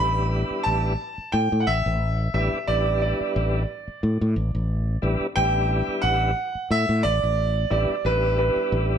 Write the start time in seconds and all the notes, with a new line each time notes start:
Already playing: B5
0.00 A1 G3 B3 D4 E4
0.51 muted fretless electric bass stroke
0.63 A1 A5
1.18 muted fretless electric bass stroke
1.32 A2 G5
1.52 A2
1.60 F#5
1.67 A1 E5
1.86 A1
2.34 A1 G3 B3 D4 E4 E5
2.54 muted fretless electric bass stroke
2.68 A1 G3 B3 D4 E4 D5
3.02 D5
3.21 muted fretless electric bass stroke
3.36 A1
3.88 muted fretless electric bass stroke
4.03 A2
4.21 A2
4.36 A1
4.55 A1
5.02 A1 G3 B3 D4 E4
5.21 muted fretless electric bass stroke
5.36 A1 G3 B3 D4 E4 G5
5.88 muted fretless electric bass stroke
6.02 A1 F#5
6.55 muted fretless electric bass stroke
6.71 A2 E5
6.89 A2
7.03 A1 D5
7.23 A1
7.70 A1 G3 B3 D4 E4 D5
7.90 muted fretless electric bass stroke
8.04 A1 G3 B3 D4 E4 B4
8.39 B4
8.56 muted fretless electric bass stroke
8.72 A1